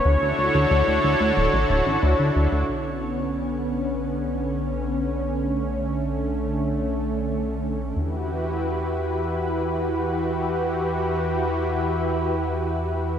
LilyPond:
<<
  \new Staff \with { instrumentName = "Supersaw synth" } { \time 4/4 \key b \minor \tempo 4 = 91 cis''1 | r1 | r1 | r1 |
r1 | }
  \new Staff \with { instrumentName = "Analog synth pad" } { \time 4/4 \key b \minor << { <d d' e' a'>1 | <d cis'>1~ | <d cis'>1 | <e e' fis' b'>1~ |
<e e' fis' b'>1 | } \\ { fis'1 | b1 | a1 | g'1~ |
g'1 | } >> }
  \new Staff \with { instrumentName = "Analog synth bass" } { \clef bass \time 4/4 \key b \minor d,16 d,16 d,16 d,16 d,16 d,16 d,16 d,16 d,,16 a,,16 d,,16 a,,16 d,16 d,16 d,16 d,16 | b,,1~ | b,,1 | e,1~ |
e,1 | }
>>